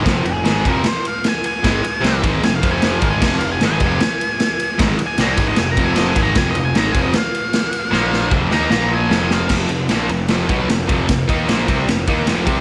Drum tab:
CC |--------|--------|x-------|--------|
RD |xxxxxxxx|xxxxxxxx|-xxxxxxx|xxxxxxxx|
SD |o-o-o-o-|o-o-o-o-|o-o-o-o-|o-o-o-o-|
BD |o--o----|o--o-o-o|o--o----|o--o-o-o|

CC |--------|--------|x-------|--------|
RD |xxxxxxxx|--------|-xxxxxxx|xxxxxxxx|
SD |o-o-o-o-|oo-oo-oo|o-o-o-o-|o-o-o-o-|
BD |o--o----|--o-----|o----o-o|oo-o-o-o|